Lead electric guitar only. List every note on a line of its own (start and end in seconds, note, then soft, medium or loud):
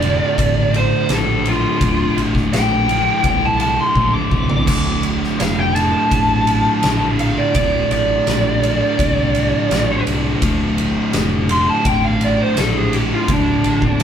0.00 0.72 D5 loud
0.77 1.10 C5 medium
1.14 1.46 A4 loud
1.48 2.17 F4 loud
2.54 3.23 G5 medium
3.27 3.45 G5 loud
3.45 3.60 A5 medium
3.61 3.78 A5 medium
3.80 4.14 C6 loud
4.14 4.66 D6 medium
4.67 5.03 D6 loud
5.41 5.59 F5 medium
5.59 5.75 G5 medium
5.75 7.15 A5 loud
7.20 7.37 F5 loud
7.38 7.54 D5 medium
7.56 7.90 D5 medium
7.92 10.03 D5 loud
11.51 11.69 C6 loud
11.69 11.86 A5 medium
11.86 12.03 G5 medium
12.05 12.24 F5 medium
12.24 12.40 D5 medium
12.42 12.58 C5 medium
12.59 12.77 A4 loud
12.77 12.93 G#4 medium
12.95 13.11 G4 loud
13.14 13.32 F4 loud
13.32 14.03 D4 medium